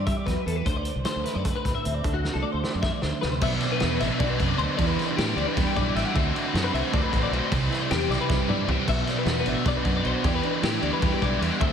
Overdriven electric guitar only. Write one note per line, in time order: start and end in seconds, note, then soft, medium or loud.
3.42 3.81 B2 medium
3.42 3.82 F#3 medium
3.42 3.83 B3 medium
3.42 3.85 D4 medium
3.82 4.18 B2 medium
3.82 4.05 F#3 medium
3.82 4.03 B3 medium
3.82 4.02 D4 medium
4.03 4.20 F#3 medium
4.03 4.21 B3 medium
4.03 4.22 D4 medium
4.20 4.58 B2 medium
4.20 4.42 F#3 loud
4.20 4.40 B3 loud
4.20 4.38 D4 loud
4.39 4.59 F#3 medium
4.39 4.61 B3 medium
4.39 4.62 D4 medium
4.59 4.78 B2 medium
4.59 4.78 F#3 medium
4.59 4.79 B3 medium
4.59 4.81 D4 medium
4.78 5.16 E3 medium
4.78 5.17 G3 medium
4.78 5.18 B3 loud
4.78 5.19 E4 loud
5.17 5.54 E3 medium
5.17 5.38 G3 medium
5.17 5.37 B3 medium
5.17 5.35 E4 medium
5.36 5.56 G3 medium
5.36 5.57 B3 medium
5.36 5.57 E4 medium
5.55 5.94 E3 loud
5.55 5.78 G3 loud
5.55 5.77 B3 loud
5.55 5.76 E4 loud
5.77 5.95 G3 medium
5.77 5.96 B3 medium
5.77 5.97 E4 medium
5.95 6.14 E3 medium
5.95 6.14 G3 medium
5.95 6.15 B3 medium
5.95 6.15 E4 medium
6.14 6.53 D3 medium
6.14 6.55 A3 medium
6.14 6.56 C4 medium
6.14 6.56 F#4 medium
6.54 6.92 D3 medium
6.54 6.77 A3 medium
6.54 6.75 C4 medium
6.54 6.73 F#4 medium
6.74 6.94 C4 medium
6.74 6.95 F#4 medium
6.78 6.93 A3 medium
6.93 7.32 D3 medium
6.93 7.15 A3 loud
6.93 7.14 C4 loud
6.93 7.12 F#4 loud
7.14 7.33 A3 medium
7.14 7.34 C4 medium
7.14 7.35 F#4 medium
7.33 7.51 D3 medium
7.33 7.52 A3 medium
7.33 7.52 C4 medium
7.33 7.52 F#4 medium
7.52 8.10 C3 medium
7.52 7.89 E3 medium
7.52 7.91 G3 medium
7.52 7.92 C4 loud
7.52 7.92 E4 medium
7.90 8.29 E3 medium
7.90 8.12 G3 medium
7.90 8.11 C4 medium
7.90 8.09 E4 medium
8.10 8.29 G3 medium
8.10 8.30 C4 medium
8.10 8.30 E4 medium
8.29 8.68 C3 loud
8.29 8.66 E3 loud
8.29 8.50 G3 medium
8.29 8.48 C4 loud
8.29 8.47 E4 loud
8.48 8.68 G3 medium
8.48 8.69 C4 medium
8.48 8.69 E4 medium
8.67 8.86 E3 medium
8.67 8.87 G3 medium
8.67 8.88 C4 medium
8.67 8.88 E4 medium
8.85 9.45 B2 medium
8.85 9.24 F#3 medium
8.85 9.26 B3 medium
8.85 9.27 D4 medium
8.85 9.28 F#4 medium
9.25 9.62 F#3 medium
9.25 9.46 B3 medium
9.25 9.46 D4 medium
9.25 9.44 F#4 medium
9.45 9.63 B3 medium
9.45 9.64 D4 medium
9.45 9.65 F#4 medium
9.63 10.03 B2 loud
9.63 10.02 F#3 medium
9.63 9.85 B3 loud
9.63 9.84 D4 loud
9.63 9.82 F#4 loud
9.83 10.03 B3 medium
9.83 10.05 D4 medium
9.83 10.04 F#4 medium
10.03 10.21 F#3 medium
10.03 10.21 B3 medium
10.03 10.23 D4 medium
10.03 10.24 F#4 medium
10.21 10.60 E3 medium
10.21 10.61 B3 medium
10.21 10.62 E4 medium
10.21 10.63 G4 loud
10.61 11.00 E3 medium
10.61 10.85 B3 medium
10.61 10.83 E4 medium
10.61 10.81 G4 loud
10.82 11.01 B3 medium
10.82 11.02 E4 medium
10.82 11.03 G4 medium
11.01 11.40 E3 loud
11.01 11.22 B3 medium
11.01 11.21 E4 loud
11.01 11.19 G4 loud
11.20 11.41 B3 medium
11.20 11.42 E4 medium
11.20 11.42 G4 medium
11.41 11.59 E3 medium
11.41 11.60 B3 medium
11.41 11.60 E4 medium
11.41 11.61 G4 loud
11.59 11.73 D3 medium
11.59 11.73 F#3 medium
11.59 11.73 A3 medium
11.59 11.73 D4 medium
11.59 11.73 F#4 medium
11.59 11.73 C5 medium